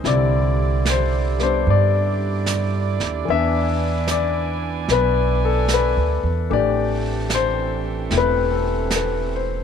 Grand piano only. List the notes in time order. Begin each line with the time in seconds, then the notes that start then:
0.05 D3 G3 C4 E4 D5
0.90 C5
1.38 G3 B3 D4
1.43 C5
1.70 D5
3.25 E3
3.29 B3 D4 E5
4.11 D5
4.91 B3 B4
5.45 A4
5.74 B4
6.50 E3 A3 D4 G4 D5
7.35 C5
8.11 A3 C4 E4
8.18 B4
8.52 A4
8.96 B4
9.35 C5